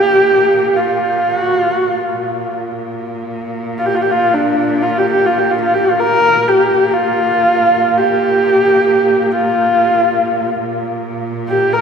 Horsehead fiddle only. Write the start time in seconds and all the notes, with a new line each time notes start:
Already playing: G4
0.76 F4
1.38 F#4
1.55 F4
1.73 F#4
1.90 F4
3.78 F4
3.86 G4
3.95 F4
4.01 G4
4.10 F4
4.34 D4
4.82 F4
4.98 G4
5.11 G4
5.26 F4
5.38 G4
5.51 F4
5.61 F4
5.74 G4
5.85 F4
5.99 A#4
6.48 G4
6.93 F4
7.97 G4
9.32 F4
11.49 G4
11.73 A#4